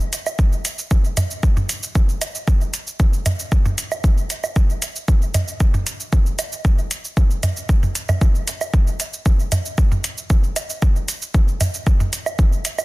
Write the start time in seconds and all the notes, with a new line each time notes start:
0.00 cabasa
0.13 closed hi-hat, cabasa
0.26 cabasa, low woodblock
0.39 kick, cabasa
0.52 cabasa
0.65 closed hi-hat, cabasa
0.78 cabasa
0.91 kick, cabasa
1.05 cabasa
1.17 closed hi-hat, mid tom, cabasa, low woodblock
1.31 cabasa
1.43 kick, cabasa
1.57 mid tom, cabasa
1.69 closed hi-hat, cabasa
1.83 cabasa
1.95 kick, cabasa
2.09 cabasa
2.21 closed hi-hat, cabasa, low woodblock
2.35 cabasa
2.48 kick, cabasa
2.61 cabasa
2.74 closed hi-hat, cabasa
2.87 cabasa
3.00 kick, cabasa
3.13 cabasa
3.26 closed hi-hat, mid tom, cabasa, low woodblock
3.39 cabasa
3.52 kick, cabasa
3.65 mid tom, cabasa
3.78 closed hi-hat, cabasa
3.92 cabasa, low woodblock
4.04 kick, cabasa
4.18 cabasa
4.30 closed hi-hat, cabasa
4.44 cabasa, low woodblock
4.56 kick, cabasa
4.70 cabasa
4.82 closed hi-hat, cabasa
4.96 cabasa
5.08 kick, cabasa
5.22 cabasa
5.34 closed hi-hat, mid tom, cabasa, low woodblock
5.48 cabasa
5.60 kick, cabasa
5.74 mid tom, cabasa
5.87 closed hi-hat, cabasa
6.00 cabasa
6.13 kick, cabasa
6.26 cabasa
6.39 closed hi-hat, cabasa, low woodblock
6.52 cabasa
6.65 kick, cabasa
6.78 cabasa
6.91 closed hi-hat, cabasa
7.05 cabasa
7.17 kick, cabasa
7.31 cabasa
7.43 closed hi-hat, mid tom, cabasa, low woodblock
7.57 cabasa
7.69 kick, cabasa
7.83 mid tom, cabasa
7.95 closed hi-hat, cabasa
8.09 mid tom, cabasa, low woodblock
8.21 kick, cabasa
8.35 cabasa
8.48 closed hi-hat, cabasa
8.61 cabasa, low woodblock
8.74 kick, cabasa
8.87 cabasa
9.00 closed hi-hat, cabasa
9.13 cabasa
9.26 kick, cabasa
9.39 cabasa
9.52 closed hi-hat, mid tom, cabasa, low woodblock
9.65 cabasa
9.78 kick, cabasa
9.92 mid tom, cabasa
10.04 closed hi-hat, cabasa
10.18 cabasa
10.30 kick, cabasa
10.44 cabasa
10.56 closed hi-hat, cabasa, low woodblock
10.70 cabasa
10.82 kick, cabasa
10.96 cabasa
11.08 closed hi-hat, cabasa
11.22 cabasa
11.34 kick, cabasa
11.48 cabasa
11.61 closed hi-hat, mid tom, cabasa, low woodblock
11.74 cabasa
11.87 kick, cabasa
12.00 mid tom, cabasa
12.13 closed hi-hat, cabasa
12.26 cabasa, low woodblock
12.39 kick, cabasa
12.52 cabasa
12.65 closed hi-hat, cabasa
12.79 cabasa, low woodblock